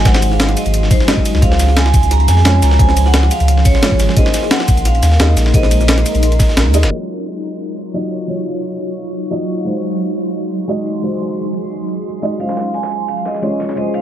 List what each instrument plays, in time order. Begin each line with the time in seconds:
Already playing: sub bass G#1, ambient pad F#3 D#4 G#4 C6, felt piano G#3 D#4 F#4 C5 D#5
0.04 felt piano G#3 D#4 C5, vibraphone F#5, kick, snare, closed hi-hat
0.14 snare, closed hi-hat
0.22 closed hi-hat, ride, shaker
0.32 vibraphone F5, snare
0.40 snare, closed hi-hat
0.49 snare, closed hi-hat
0.56 vibraphone D#5, closed hi-hat, ride, shaker
0.66 sub bass G#1, closed hi-hat, shaker
0.74 closed hi-hat
0.83 snare
0.91 sub bass C2, vibraphone C5, kick, closed hi-hat, ride, shaker
1.00 snare
1.08 felt piano G#3 D#4 F#4 D#5, vibraphone D#5, snare, closed hi-hat, open hi-hat
1.17 kick
1.25 closed hi-hat, ride, shaker
1.34 sub bass C#2, snare
1.41 ambient pad F3 C#4, felt piano G#3 C#4 F4 C5, vibraphone F5, kick, closed hi-hat
1.51 snare
1.59 snare, closed hi-hat, ride, shaker
1.68 snare
1.77 vibraphone G#5, snare, closed hi-hat
1.86 snare
1.94 kick, closed hi-hat, ride, shaker
2.03 sub bass C#2, closed hi-hat, shaker
2.11 vibraphone A#5, snare, closed hi-hat
2.20 closed hi-hat
2.28 sub bass F2, vibraphone G#5, snare, closed hi-hat, ride, shaker
2.37 snare
2.45 sub bass F2, felt piano G#3 C#4 F4 C#5, snare, closed hi-hat
2.62 sub bass C#2, vibraphone A#5, snare, closed hi-hat, ride, shaker
2.71 snare
2.79 felt piano G#3 C#4 F4 C5, vibraphone G#5, kick, closed hi-hat
2.89 snare
2.97 closed hi-hat, ride, shaker
3.06 vibraphone F#5, snare
3.14 snare, closed hi-hat
3.23 snare
3.31 vibraphone F5, closed hi-hat, ride, shaker
3.40 sub bass C#2, closed hi-hat, shaker
3.48 closed hi-hat
3.57 snare
3.65 sub bass C#2, vibraphone C#5, kick, closed hi-hat, ride, shaker
3.75 sub bass G#1, snare
3.82 felt piano G#3 C#4 F4 C#5, snare, closed hi-hat, open hi-hat
3.91 kick
4.00 sub bass G#1, snare, closed hi-hat, ride, shaker
4.09 snare
4.16 ambient pad G#3 D#4 A#4, felt piano A#3 D#4 G#4 C5, vibraphone D#5, kick, closed hi-hat
4.26 snare
4.34 snare, closed hi-hat, ride, shaker
4.43 snare
4.51 vibraphone F#5, snare, closed hi-hat
4.60 snare
4.68 kick, closed hi-hat, ride, shaker
4.77 sub bass A#1, closed hi-hat, shaker
4.85 vibraphone F5, snare, closed hi-hat
4.95 closed hi-hat
5.02 sub bass D#2, snare, closed hi-hat, ride, shaker
5.12 snare
5.19 sub bass D#2, felt piano A#3 D#4 G#4 D#5, snare, closed hi-hat
5.37 sub bass A#1, snare, closed hi-hat, ride, shaker
5.46 snare
5.53 felt piano A#3 D#4 G#4 C5, vibraphone D#5, kick, closed hi-hat
5.63 snare
5.71 closed hi-hat, ride, shaker
5.81 snare, shaker
5.88 snare, closed hi-hat
5.98 snare, closed hi-hat
6.06 closed hi-hat, ride, shaker
6.14 sub bass A#1, closed hi-hat, shaker
6.23 closed hi-hat
6.32 closed hi-hat
6.40 kick, snare, closed hi-hat, ride, shaker
6.49 snare
6.57 sub bass A#1, snare, closed hi-hat
6.66 sub bass D#2
6.73 felt piano A#3 D#4 G#4 D#5, closed hi-hat, ride, shaker
6.83 sub bass F1, snare, closed hi-hat
6.91 felt piano F#3 D#4 F4, ambient pad F#3 D#4 F4 C#5, crash
7.43 shaker
7.77 shaker
7.93 felt piano F#3 D#4 F4 D#5
8.11 shaker
8.27 felt piano F#3 D#4 F4 C#5
8.46 shaker
8.80 shaker
8.89 shaker
9.14 shaker
9.30 felt piano F#3 D#4 F4 D#5
9.48 shaker
9.64 felt piano G#3 D#4 F#4 C5, ambient pad G#4 C6
9.83 shaker
10.17 shaker
10.26 shaker
10.51 shaker
10.68 felt piano G#3 D#4 F#4 D#5
10.85 shaker
11.02 felt piano G#3 D#4 F#4 C5
11.20 shaker
11.29 shaker
11.54 shaker
11.63 shaker
11.88 shaker
12.22 felt piano G#3 D#4 F#4 D#5, shaker
12.39 ambient pad F3 C#4 G#4, felt piano G#3 C#4 F4 C5, vibraphone F5, closed hi-hat
12.49 snare
12.57 snare, closed hi-hat, shaker
12.74 vibraphone G#5, closed hi-hat
12.83 snare
12.91 closed hi-hat, shaker
13.00 shaker
13.08 vibraphone F5, closed hi-hat
13.17 closed hi-hat
13.25 vibraphone D#5, snare, closed hi-hat, shaker
13.35 snare
13.42 felt piano G#3 C#4 F4 C#5, closed hi-hat
13.59 vibraphone C#5, snare, closed hi-hat, shaker
13.69 snare
13.76 felt piano G#3 C#4 F4 C5, vibraphone D#5, closed hi-hat
13.94 vibraphone F5, closed hi-hat, shaker